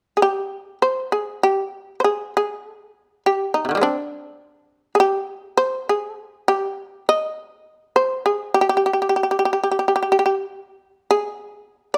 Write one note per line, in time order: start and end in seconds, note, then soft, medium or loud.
0.17 0.22 G#4 soft
0.22 0.78 G4 medium
0.82 1.10 C5 medium
1.12 1.41 G#4 soft
1.43 1.94 G4 medium
2.00 2.04 C5 soft
2.04 2.33 G#4 medium
2.37 3.23 G#4 medium
3.26 3.54 G4 medium
3.54 3.81 D#4 soft
3.65 3.68 C3 soft
3.69 3.75 D3 soft
3.69 3.85 D#3 soft
3.75 3.89 G3 soft
3.75 3.82 G#3 soft
3.81 3.96 C4 soft
3.81 4.92 D4 medium
4.95 5.00 G#4 soft
5.00 5.57 G4 medium
5.57 5.88 C5 medium
5.89 6.47 G#4 soft
6.48 7.06 G4 medium
7.09 7.95 D#5 medium
7.96 8.25 C5 medium
8.26 8.54 G#4 medium
8.54 8.60 G4 medium
8.61 8.68 G4 soft
8.69 8.76 G4 soft
8.77 8.85 G4 soft
8.86 8.92 G4 soft
8.93 9.01 G4 soft
9.02 9.08 G4 soft
9.09 9.15 G4 soft
9.16 9.22 G4 soft
9.23 9.30 G4 soft
9.31 9.38 G4 soft
9.39 9.44 G4 soft
9.45 9.52 G4 soft
9.53 9.62 G4 soft
9.63 9.70 G4 soft
9.71 9.78 G4 soft
9.79 9.87 G4 soft
9.88 9.94 G4 soft
9.96 10.01 G4 soft
10.03 10.10 G4 soft
10.12 10.18 G4 soft
10.19 10.24 G4 soft
10.26 10.34 G4 soft
11.11 11.91 G#4 medium
11.94 11.98 D5 soft